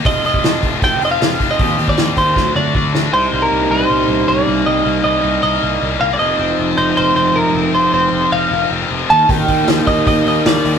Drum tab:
HH |o-o-o-o-o-o-o-o-|o-o-o-o---------|----------------|----------------|
SD |----o-------o---|----o---o-----o-|----------------|----------------|
T2 |----------------|----------o-----|----------------|----------------|
BD |o--o--o-o-----o-|o--o--o-o---o---|----------------|----------------|

HH |----------------|----------------|o-o-o-o-o-o-o-o-|
SD |----------------|----------------|----o-------o---|
T2 |----------------|----------------|----------------|
BD |----------------|----------------|o-o---o-o-------|